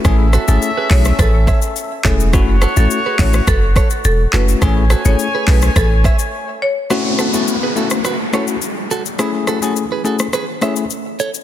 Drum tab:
HH |------o---------|------o---------|------o---------|----------------|
SH |x-xxx-xxx-xxx-xx|x-xxx-xxx-xxx-xx|x-xxx-xxx-xx----|x-xxx-xxx-xxx-xx|
CP |------x-------x-|------x-------x-|------x---------|----------------|
SD |r-r----rr-r-----|r-r----rr-r-----|r-r----rr-r-----|r-r----rr-r-----|
BD |o-----o-o-o---o-|o-----o-o-o-----|o-----o-o-o-----|----------------|

HH |----------------|
SH |x-xxx-xxx-xxx-xx|
CP |----------------|
SD |r-r----rr-r-----|
BD |----------------|